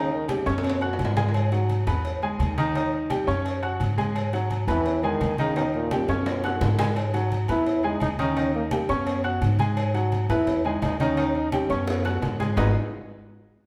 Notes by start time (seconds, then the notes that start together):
Already playing: D#2 C#3 D#3 D#4 D#5
0.12 D#3, high conga
0.28 C#3 G3 G4 G5, cowbell, high conga, low agogo
0.46 F#2 B2 C#4 C#5 C#6, cowbell, high conga, high timbale
0.58 high timbale
0.63 cowbell, high conga, low agogo
0.70 high timbale
0.81 F#4 F#5 F#6, high conga, low agogo
0.93 low timbale
0.99 G#2, cowbell, high conga, low agogo
1.05 low timbale
1.16 G#3 G#4 G#5, cowbell, high conga, low timbale
1.29 low timbale
1.34 cowbell, high conga, low agogo
1.52 F#3 F#4 F#5, cowbell, high conga, low agogo
1.69 cowbell, high conga, low agogo
1.87 E2 B3 B4 B5, cowbell, low conga, low agogo
2.05 cowbell, high conga
2.22 G#3 G#4 G#5, high conga, low agogo
2.39 D#2, cowbell, high conga, low agogo
2.58 D#3 D#4 D#5, cowbell, high conga
2.75 D#3 D#4 D#5, cowbell, high conga, low agogo
2.93 high conga
3.10 G3 G4 G5, cowbell, high conga, low agogo
3.27 F#2 C#4 C#5 C#6, cowbell, high conga
3.45 cowbell, high conga, low agogo
3.62 F#4 F#5 F#6, high conga, low agogo
3.80 G#2, cowbell, high conga, low agogo
3.98 G#3 G#4 G#5, cowbell, high conga
4.16 cowbell, high conga, low agogo
4.33 F#3 F#4 F#5, cowbell, high conga, low agogo
4.50 cowbell, high conga, low agogo
4.67 E2 E3 B3 B4 B5, cowbell, low conga, low agogo
4.86 cowbell, high conga
5.03 D#3 G#3 G#4 G#5, high conga, low agogo
5.20 D#2, cowbell, high conga, low agogo
5.38 C#3 D#3 D#4 D#5, cowbell, high conga
5.56 B2 D#3 D#4 D#5, cowbell, high conga, low agogo
5.74 A#2, high conga
5.91 G3 G4 G5, cowbell, high conga, high timbale, low agogo
6.08 F#2 B2 C#4 C#5 C#6, cowbell, high conga, high timbale
6.26 cowbell, high conga, low timbale, low agogo
6.44 F#4 F#5 F#6, high bongo, high conga, low agogo
6.61 G#2, cowbell, high bongo, high conga, low timbale, low agogo
6.79 G#3 G#4 G#5, cowbell, low bongo, high conga, low timbale
6.96 cowbell, high conga, low agogo
7.13 F#3 F#4 F#5, cowbell, high conga, low agogo
7.31 cowbell, high conga, low agogo
7.48 E2 B3 E4 B4 B5, cowbell, low conga, low agogo
7.66 cowbell, high conga
7.83 G#3 D#4 G#4 G#5, high conga, low agogo
8.00 D#2 D#4, cowbell, high conga, low agogo
8.19 D#3 C#4 D#4 D#5, cowbell, high conga
8.36 D#3 D#4 D#5, cowbell, high conga, low agogo
8.54 A#3, high conga
8.71 G3 A#3 G4 G5, cowbell, high conga, low agogo
8.89 F#2 B3 C#4 C#5 C#6, cowbell, high conga
9.06 cowbell, high conga, low agogo
9.24 F#4 F#5 F#6, high conga, low agogo
9.42 G#2, cowbell, high conga, low agogo
9.59 G#3 G#4 G#5, cowbell, high conga
9.77 cowbell, high conga, low agogo
9.94 F#3 F#4 F#5, cowbell, high conga, low agogo
10.12 cowbell, high conga, low agogo
10.29 E2 B3 E4 B4 B5, cowbell, low conga, low agogo
10.47 cowbell, high conga, low conga
10.65 G#3 D#4 G#4 G#5, high conga, low agogo
10.82 D#2 D#4, cowbell, high conga, low timbale, low agogo
11.00 D#3 C#4 D#4 D#5, cowbell, high conga
11.17 D#3 D#4 D#5, cowbell, high conga, low agogo
11.35 D#4, high conga
11.52 G3 C#4 G4 G5, cowbell, high bongo, high conga, low agogo
11.70 F#2 B3 C#4 C#5 C#6, cowbell, high conga
11.87 cowbell, high bongo, high conga, low agogo
12.05 F#4 F#5 F#6, low bongo, high conga, low agogo
12.22 G#2, cowbell, high conga, low timbale, low agogo
12.40 G#3 G#4 G#5, cowbell, low bongo, high conga
12.57 G#1 G#3 B3 D#4 F#4 G#4 B4 D#5, low bongo, low conga, low timbale